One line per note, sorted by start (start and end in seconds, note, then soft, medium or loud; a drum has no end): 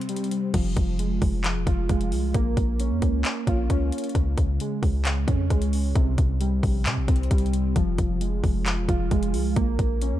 0.00 0.54 C3 medium
0.00 0.54 C4 medium
0.00 closed hi-hat soft
0.09 0.54 G3 medium
0.09 closed hi-hat medium
0.16 closed hi-hat medium
0.24 closed hi-hat soft
0.31 closed hi-hat medium
0.54 0.76 F1 loud
0.54 1.43 F3 medium
0.54 kick loud
0.54 closed hi-hat medium
0.54 crash loud
0.77 1.20 F1 loud
0.77 kick loud
0.77 closed hi-hat medium
0.99 1.89 G#3 medium
0.99 closed hi-hat medium
1.22 1.57 F1 loud
1.22 kick medium
1.22 open hi-hat medium
1.44 2.35 F3 medium
1.44 clap loud
1.44 closed hi-hat medium
1.56 1.66 E1 loud
1.67 1.88 F1 loud
1.67 2.34 F4 medium
1.67 kick loud
1.67 closed hi-hat medium
1.89 2.13 F1 loud
1.89 2.35 G#3 medium
1.89 kick loud
1.89 closed hi-hat medium
2.01 closed hi-hat medium
2.12 2.33 C2 loud
2.12 open hi-hat medium
2.34 2.56 A#1 loud
2.34 3.23 A#3 loud
2.34 kick loud
2.34 closed hi-hat medium
2.57 2.92 A#1 loud
2.57 kick loud
2.57 closed hi-hat medium
2.80 3.69 C#4 medium
2.80 closed hi-hat medium
2.91 3.02 F2 loud
3.02 3.24 C#2 loud
3.02 kick medium
3.02 closed hi-hat medium
3.24 4.15 A#3 medium
3.24 clap loud
3.24 closed hi-hat medium
3.47 3.69 A#1 loud
3.47 4.15 F4 medium
3.47 kick loud
3.47 closed hi-hat medium
3.70 3.92 C#2 loud
3.70 4.15 C#4 loud
3.70 kick loud
3.70 closed hi-hat medium
3.92 closed hi-hat medium
3.98 closed hi-hat medium
4.04 closed hi-hat medium
4.09 closed hi-hat soft
4.15 4.37 C#2 loud
4.15 5.04 C#3 medium
4.15 kick loud
4.15 closed hi-hat medium
4.38 4.59 C#2 loud
4.38 kick loud
4.38 closed hi-hat medium
4.60 5.50 G#3 medium
4.60 closed hi-hat medium
4.83 5.26 C#2 loud
4.83 kick medium
4.83 open hi-hat soft
5.05 5.95 C#3 medium
5.05 clap loud
5.05 closed hi-hat medium
5.28 5.49 F2 loud
5.28 5.96 C#4 medium
5.28 kick loud
5.28 closed hi-hat medium
5.50 5.94 C#2 loud
5.50 5.96 G#3 medium
5.50 kick loud
5.50 closed hi-hat medium
5.62 closed hi-hat medium
5.73 open hi-hat medium
5.95 6.17 C2 loud
5.95 6.85 C3 loud
5.95 kick loud
5.95 closed hi-hat medium
6.18 6.61 C2 loud
6.18 kick loud
6.18 closed hi-hat medium
6.41 7.30 G3 medium
6.41 closed hi-hat medium
6.63 6.87 A#1 loud
6.63 kick medium
6.63 open hi-hat soft
6.86 6.99 C3 loud
6.86 7.76 C3 medium
6.86 clap loud
6.86 closed hi-hat medium
6.97 7.08 A#1 loud
7.08 7.30 C2 loud
7.08 7.76 C4 medium
7.08 kick loud
7.08 closed hi-hat medium
7.16 closed hi-hat medium
7.23 closed hi-hat soft
7.31 7.74 C2 loud
7.31 7.76 G3 medium
7.31 kick loud
7.31 closed hi-hat medium
7.38 closed hi-hat medium
7.46 closed hi-hat medium
7.53 closed hi-hat medium
7.76 7.98 F1 loud
7.76 8.65 F3 medium
7.76 kick loud
7.76 closed hi-hat medium
7.98 8.42 F1 loud
7.98 kick loud
7.98 closed hi-hat medium
8.21 9.10 G#3 medium
8.21 closed hi-hat medium
8.44 8.79 F1 loud
8.44 kick medium
8.44 open hi-hat medium
8.66 9.56 F3 medium
8.66 clap loud
8.66 closed hi-hat medium
8.77 8.88 E1 loud
8.88 9.10 F1 loud
8.88 9.56 F4 medium
8.88 kick loud
8.88 closed hi-hat medium
9.11 9.35 F1 loud
9.11 9.57 G#3 medium
9.11 kick loud
9.11 closed hi-hat medium
9.23 closed hi-hat medium
9.34 9.55 C2 loud
9.34 open hi-hat medium
9.56 9.78 A#1 loud
9.56 10.20 A#3 loud
9.56 kick loud
9.56 closed hi-hat medium
9.79 10.14 A#1 loud
9.79 kick loud
9.79 closed hi-hat medium
10.02 10.20 C#4 medium
10.02 closed hi-hat medium
10.13 10.20 F2 loud